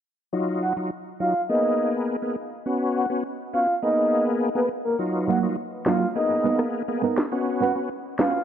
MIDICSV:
0, 0, Header, 1, 6, 480
1, 0, Start_track
1, 0, Key_signature, -6, "minor"
1, 0, Tempo, 582524
1, 271, Time_signature, 4, 2, 24, 8
1, 6955, End_track
2, 0, Start_track
2, 0, Title_t, "Soft synth lead"
2, 0, Program_c, 0, 80
2, 511, Note_on_c, 0, 78, 81
2, 600, Note_off_c, 0, 78, 0
2, 989, Note_on_c, 0, 77, 72
2, 1168, Note_off_c, 0, 77, 0
2, 1229, Note_on_c, 0, 75, 102
2, 1568, Note_off_c, 0, 75, 0
2, 2431, Note_on_c, 0, 78, 80
2, 2520, Note_off_c, 0, 78, 0
2, 2910, Note_on_c, 0, 77, 76
2, 3089, Note_off_c, 0, 77, 0
2, 3151, Note_on_c, 0, 75, 101
2, 3489, Note_off_c, 0, 75, 0
2, 3750, Note_on_c, 0, 71, 78
2, 3839, Note_off_c, 0, 71, 0
2, 3991, Note_on_c, 0, 70, 77
2, 4080, Note_off_c, 0, 70, 0
2, 4352, Note_on_c, 0, 78, 76
2, 4441, Note_off_c, 0, 78, 0
2, 4831, Note_on_c, 0, 77, 73
2, 5009, Note_off_c, 0, 77, 0
2, 5071, Note_on_c, 0, 75, 100
2, 5409, Note_off_c, 0, 75, 0
2, 6270, Note_on_c, 0, 78, 84
2, 6359, Note_off_c, 0, 78, 0
2, 6751, Note_on_c, 0, 77, 79
2, 6929, Note_off_c, 0, 77, 0
2, 6955, End_track
3, 0, Start_track
3, 0, Title_t, "Nylon-string guitar"
3, 0, Program_c, 1, 24
3, 4347, Note_on_c, 1, 54, 81
3, 4354, Note_on_c, 1, 58, 81
3, 4360, Note_on_c, 1, 65, 91
3, 4495, Note_off_c, 1, 54, 0
3, 4499, Note_off_c, 1, 58, 0
3, 4502, Note_off_c, 1, 65, 0
3, 4826, Note_on_c, 1, 54, 90
3, 4834, Note_on_c, 1, 58, 97
3, 4840, Note_on_c, 1, 65, 105
3, 4975, Note_off_c, 1, 54, 0
3, 4979, Note_off_c, 1, 58, 0
3, 4982, Note_off_c, 1, 65, 0
3, 5307, Note_on_c, 1, 59, 79
3, 5314, Note_on_c, 1, 63, 82
3, 5320, Note_on_c, 1, 70, 86
3, 5455, Note_off_c, 1, 59, 0
3, 5459, Note_off_c, 1, 63, 0
3, 5462, Note_off_c, 1, 70, 0
3, 5786, Note_on_c, 1, 59, 77
3, 5793, Note_on_c, 1, 63, 82
3, 5799, Note_on_c, 1, 70, 86
3, 5935, Note_off_c, 1, 59, 0
3, 5938, Note_off_c, 1, 63, 0
3, 5941, Note_off_c, 1, 70, 0
3, 6266, Note_on_c, 1, 61, 72
3, 6273, Note_on_c, 1, 66, 80
3, 6279, Note_on_c, 1, 71, 86
3, 6415, Note_off_c, 1, 61, 0
3, 6418, Note_off_c, 1, 66, 0
3, 6421, Note_off_c, 1, 71, 0
3, 6747, Note_on_c, 1, 61, 79
3, 6754, Note_on_c, 1, 66, 91
3, 6759, Note_on_c, 1, 71, 92
3, 6895, Note_off_c, 1, 61, 0
3, 6899, Note_off_c, 1, 66, 0
3, 6901, Note_off_c, 1, 71, 0
3, 6955, End_track
4, 0, Start_track
4, 0, Title_t, "Tonewheel organ"
4, 0, Program_c, 2, 16
4, 270, Note_on_c, 2, 54, 82
4, 273, Note_on_c, 2, 63, 78
4, 275, Note_on_c, 2, 65, 94
4, 602, Note_off_c, 2, 54, 0
4, 603, Note_off_c, 2, 63, 0
4, 604, Note_off_c, 2, 65, 0
4, 629, Note_on_c, 2, 54, 73
4, 632, Note_on_c, 2, 63, 67
4, 634, Note_on_c, 2, 65, 80
4, 743, Note_off_c, 2, 54, 0
4, 745, Note_off_c, 2, 63, 0
4, 746, Note_off_c, 2, 65, 0
4, 989, Note_on_c, 2, 54, 69
4, 991, Note_on_c, 2, 63, 63
4, 994, Note_on_c, 2, 65, 76
4, 1103, Note_off_c, 2, 54, 0
4, 1104, Note_off_c, 2, 63, 0
4, 1106, Note_off_c, 2, 65, 0
4, 1230, Note_on_c, 2, 58, 88
4, 1232, Note_on_c, 2, 59, 75
4, 1234, Note_on_c, 2, 68, 94
4, 1782, Note_off_c, 2, 58, 0
4, 1783, Note_off_c, 2, 59, 0
4, 1785, Note_off_c, 2, 68, 0
4, 1830, Note_on_c, 2, 58, 73
4, 1831, Note_on_c, 2, 59, 64
4, 1835, Note_on_c, 2, 68, 78
4, 1944, Note_off_c, 2, 58, 0
4, 1945, Note_off_c, 2, 59, 0
4, 1946, Note_off_c, 2, 68, 0
4, 2190, Note_on_c, 2, 59, 83
4, 2193, Note_on_c, 2, 61, 76
4, 2194, Note_on_c, 2, 66, 91
4, 2522, Note_off_c, 2, 59, 0
4, 2523, Note_off_c, 2, 61, 0
4, 2524, Note_off_c, 2, 66, 0
4, 2551, Note_on_c, 2, 59, 73
4, 2553, Note_on_c, 2, 61, 67
4, 2556, Note_on_c, 2, 66, 84
4, 2664, Note_off_c, 2, 59, 0
4, 2665, Note_off_c, 2, 61, 0
4, 2667, Note_off_c, 2, 66, 0
4, 2911, Note_on_c, 2, 59, 69
4, 2913, Note_on_c, 2, 61, 62
4, 2915, Note_on_c, 2, 66, 78
4, 3024, Note_off_c, 2, 59, 0
4, 3025, Note_off_c, 2, 61, 0
4, 3027, Note_off_c, 2, 66, 0
4, 3151, Note_on_c, 2, 58, 86
4, 3153, Note_on_c, 2, 59, 78
4, 3155, Note_on_c, 2, 68, 96
4, 3703, Note_off_c, 2, 58, 0
4, 3704, Note_off_c, 2, 59, 0
4, 3705, Note_off_c, 2, 68, 0
4, 3750, Note_on_c, 2, 58, 72
4, 3752, Note_on_c, 2, 59, 66
4, 3754, Note_on_c, 2, 68, 77
4, 3864, Note_off_c, 2, 58, 0
4, 3865, Note_off_c, 2, 59, 0
4, 3866, Note_off_c, 2, 68, 0
4, 4109, Note_on_c, 2, 54, 89
4, 4112, Note_on_c, 2, 63, 82
4, 4114, Note_on_c, 2, 65, 99
4, 4441, Note_off_c, 2, 54, 0
4, 4443, Note_off_c, 2, 63, 0
4, 4444, Note_off_c, 2, 65, 0
4, 4468, Note_on_c, 2, 54, 74
4, 4471, Note_on_c, 2, 63, 66
4, 4474, Note_on_c, 2, 65, 83
4, 4583, Note_off_c, 2, 54, 0
4, 4584, Note_off_c, 2, 63, 0
4, 4586, Note_off_c, 2, 65, 0
4, 4829, Note_on_c, 2, 54, 70
4, 4832, Note_on_c, 2, 63, 63
4, 4834, Note_on_c, 2, 65, 80
4, 4943, Note_off_c, 2, 54, 0
4, 4945, Note_off_c, 2, 63, 0
4, 4946, Note_off_c, 2, 65, 0
4, 5070, Note_on_c, 2, 58, 89
4, 5072, Note_on_c, 2, 59, 83
4, 5075, Note_on_c, 2, 68, 92
4, 5622, Note_off_c, 2, 58, 0
4, 5624, Note_off_c, 2, 59, 0
4, 5625, Note_off_c, 2, 68, 0
4, 5669, Note_on_c, 2, 58, 70
4, 5671, Note_on_c, 2, 59, 68
4, 5674, Note_on_c, 2, 68, 81
4, 5783, Note_off_c, 2, 58, 0
4, 5784, Note_off_c, 2, 59, 0
4, 5786, Note_off_c, 2, 68, 0
4, 6029, Note_on_c, 2, 59, 86
4, 6031, Note_on_c, 2, 61, 79
4, 6034, Note_on_c, 2, 66, 94
4, 6361, Note_off_c, 2, 59, 0
4, 6362, Note_off_c, 2, 61, 0
4, 6364, Note_off_c, 2, 66, 0
4, 6389, Note_on_c, 2, 59, 75
4, 6391, Note_on_c, 2, 61, 67
4, 6393, Note_on_c, 2, 66, 77
4, 6503, Note_off_c, 2, 59, 0
4, 6504, Note_off_c, 2, 61, 0
4, 6505, Note_off_c, 2, 66, 0
4, 6749, Note_on_c, 2, 59, 69
4, 6752, Note_on_c, 2, 61, 67
4, 6754, Note_on_c, 2, 66, 80
4, 6863, Note_off_c, 2, 59, 0
4, 6865, Note_off_c, 2, 61, 0
4, 6866, Note_off_c, 2, 66, 0
4, 6955, End_track
5, 0, Start_track
5, 0, Title_t, "Muted nylon-string guitar strokes"
5, 5187, Note_on_c, 9, 29, 41
5, 5270, Note_off_c, 9, 29, 0
5, 6955, End_track
6, 0, Start_track
6, 0, Title_t, "Drums"
6, 4829, Note_on_c, 9, 38, 107
6, 4831, Note_on_c, 9, 37, 90
6, 4912, Note_off_c, 9, 38, 0
6, 4914, Note_off_c, 9, 37, 0
6, 5430, Note_on_c, 9, 37, 92
6, 5513, Note_off_c, 9, 37, 0
6, 5914, Note_on_c, 9, 38, 111
6, 5916, Note_on_c, 9, 37, 86
6, 5996, Note_off_c, 9, 38, 0
6, 5998, Note_off_c, 9, 37, 0
6, 6749, Note_on_c, 9, 38, 116
6, 6751, Note_on_c, 9, 37, 89
6, 6832, Note_off_c, 9, 38, 0
6, 6834, Note_off_c, 9, 37, 0
6, 6955, End_track
0, 0, End_of_file